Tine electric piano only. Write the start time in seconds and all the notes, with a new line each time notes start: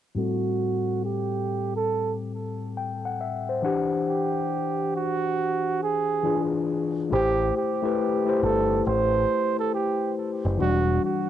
0.14 A2 G3 C4 A4
2.77 G5
3.05 F#5
3.21 E5
3.49 C5
3.62 E3 D4 G4 F#5
6.23 E3 D4 F4 G#4
7.10 A3 E4 G4 C5
7.82 A3 E4 G4 B4
8.25 A3 E4 G4 C5
10.57 E3 G3 D4 F#4